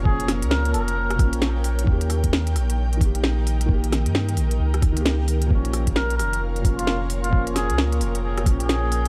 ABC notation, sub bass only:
X:1
M:4/4
L:1/16
Q:"Swing 16ths" 1/4=132
K:Bbdor
V:1 name="Sub bass" clef=bass
F,,,3 D,,3 F,,,4 B,,,6 | E,,6 B,,,8- B,,,2- | B,,,3 G,,3 B,,,2 D,,8 | B,,,6 F,,,8- F,,,2- |
F,,,3 D,,3 F,,,4 B,,,6 |]